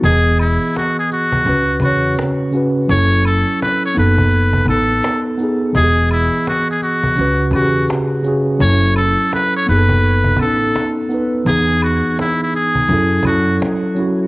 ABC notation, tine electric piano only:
X:1
M:4/4
L:1/8
Q:"Swing 16ths" 1/4=84
K:F#dor
V:1 name="Tine electric piano"
[E,B,Gd]3 z [C,CFB] [C,CFc]2 [C,CFB] | [F,CEA]3 [B,DA]2 [B,DA]2 [B,DG] | [E,B,=G^Gd]3 z [C,CFB] [C,CF=G^G]2 [C,CFG] | [F,CEA]3 [B,DGA]2 [B,CDA]2 [B,DB] |
[E,B,DG]3 z [F,CEA] [F,CEA]2 [F,CEF] |]